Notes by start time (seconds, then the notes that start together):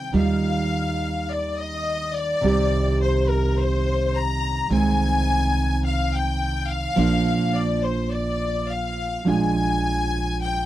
Already playing: C3 D#3 G3 C4 G4 G5
0.12 D#2 D#3 G3 D#4 F4 F5
1.32 D5
1.59 D#5
2.16 D5
2.41 C2 C3 D#3 G3 C4 G4
3.02 C5
3.29 A#4
3.60 C5
4.16 A#5
4.70 C2 C3 D#3 G#3 C4 G#5
5.85 F5
6.15 G5
6.69 F5
6.96 A#1 F3 A#3 D4 F4
7.56 D5
7.84 C5
8.13 D5
8.70 F5
9.25 A#1 F3 G#3 D4 F4
9.29 G#5
10.43 G5